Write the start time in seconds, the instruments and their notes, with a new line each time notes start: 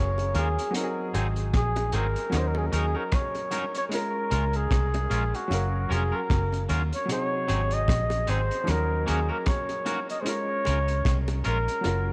Already playing: fingered electric bass F#1, grand piano F#3 C#4 A#4 F5, flugelhorn C#5
0.18 closed hi-hat, high bongo
0.34 fingered electric bass D#2, clean electric guitar A#3 C#4 F4 A#4, flugelhorn G#4, closed hi-hat, low bongo
0.59 closed hi-hat
0.71 grand piano F#3 C4, closed hi-hat
0.75 grand piano D#4 F#4, flugelhorn A#4, high bongo
0.84 grand piano G#4
1.14 fingered electric bass G#1, clean electric guitar F#3 C4 D#4 G#4, closed hi-hat, high bongo
1.36 closed hi-hat
1.53 fingered electric bass A#1, flugelhorn G#4, kick, cross-stick, closed hi-hat, high bongo
1.76 closed hi-hat, high bongo
1.92 fingered electric bass G#1, clean electric guitar F#3 C4 D#4 G#4, flugelhorn A#4, closed hi-hat, low bongo
2.16 closed hi-hat
2.30 fingered electric bass D#2, grand piano F#3 C#4 D#4, cross-stick, closed hi-hat, high bongo
2.35 grand piano A#4, flugelhorn C5
2.47 flugelhorn A#4
2.55 flugelhorn G#4, high bongo
2.66 flugelhorn A#4
2.72 fingered electric bass D#2, clean electric guitar F#3 C#4 D#4 A#4, flugelhorn G#4, closed hi-hat
2.95 clean electric guitar F#3 C#4 D#4 A#4, flugelhorn A#4
3.12 flugelhorn C#5, kick, cross-stick, closed hi-hat
3.35 closed hi-hat, high bongo
3.51 clean electric guitar F#3 C#4 D#4 A#4, closed hi-hat, low bongo
3.75 flugelhorn C#5, closed hi-hat
3.89 grand piano G#3 C#4 F4, closed hi-hat, high bongo
3.94 flugelhorn A#4, grand piano A#4
4.31 fingered electric bass C#2, clean electric guitar G#3 C#4 F4 A#4, closed hi-hat, high bongo
4.53 flugelhorn G#4, closed hi-hat
4.71 fingered electric bass C2, kick, cross-stick, closed hi-hat, high bongo
4.94 closed hi-hat, high bongo
5.10 fingered electric bass A#1, clean electric guitar G#3 C#4 F4 A#4, closed hi-hat
5.34 flugelhorn F#4, closed hi-hat
5.48 fingered electric bass F#1, grand piano F#3 C#4 F5, closed hi-hat, high bongo
5.54 grand piano A#4
5.89 fingered electric bass F1, clean electric guitar F#3 C#4 F4 A#4, flugelhorn G#4, closed hi-hat
6.12 clean electric guitar F#3 C#4 F4 A#4, flugelhorn A#4
6.30 fingered electric bass F#1, kick, cross-stick, closed hi-hat
6.52 closed hi-hat, high bongo
6.69 fingered electric bass D#2, clean electric guitar F#3 C#4 F4 A#4, closed hi-hat, low bongo
6.93 flugelhorn C#5, closed hi-hat
7.06 grand piano C3 F#3, closed hi-hat, high bongo
7.10 grand piano D#4 G#4, flugelhorn C#5
7.48 fingered electric bass G#1, clean electric guitar F#3 C4 D#4 G#4, closed hi-hat, high bongo
7.71 flugelhorn D#5, closed hi-hat
7.88 fingered electric bass A#1, kick, cross-stick, closed hi-hat, high bongo
8.10 closed hi-hat, high bongo
8.27 fingered electric bass G#1, clean electric guitar F#3 C4 D#4 G#4, flugelhorn C5, closed hi-hat
8.51 closed hi-hat
8.64 grand piano F3 C#4, closed hi-hat, high bongo
8.68 fingered electric bass D#2, grand piano F#3 D#4 A#4, flugelhorn A#4, cross-stick
9.06 fingered electric bass D#2, clean electric guitar A#3 C#4 F#4 A#4, flugelhorn G#4, closed hi-hat
9.29 clean electric guitar A#3 C#4 F#4 A#4, flugelhorn A#4
9.46 flugelhorn C#5, kick, cross-stick, closed hi-hat
9.69 closed hi-hat, high bongo
9.85 clean electric guitar A#3 C#4 F#4 A#4, closed hi-hat, low bongo
10.09 flugelhorn D#5, closed hi-hat
10.21 grand piano G#3 C#4, flugelhorn C5
10.26 grand piano F4 A#4, flugelhorn C#5, closed hi-hat, high bongo
10.65 fingered electric bass C#2, clean electric guitar G#3 C#4 F4 A#4, closed hi-hat, high bongo
10.88 closed hi-hat
11.05 fingered electric bass C2, kick, cross-stick, closed hi-hat, high bongo
11.28 closed hi-hat, high bongo
11.44 fingered electric bass A#1, clean electric guitar G#3 C#4 F4 A#4, flugelhorn A#4, closed hi-hat
11.68 closed hi-hat
11.81 grand piano F#3 C#4 F4, closed hi-hat, high bongo
11.85 fingered electric bass F#1, grand piano A#4